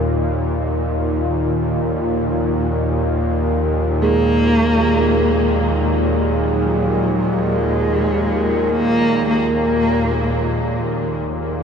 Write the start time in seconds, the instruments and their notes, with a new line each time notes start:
Already playing: synth drone D#2 A#2, ambient pad D#4 F4 A#4
4.02 singing bowl G#3 G#4, cello A#3
6.37 cello F#3
7.53 cello G#3
8.69 cello A#3
9.29 cello A#3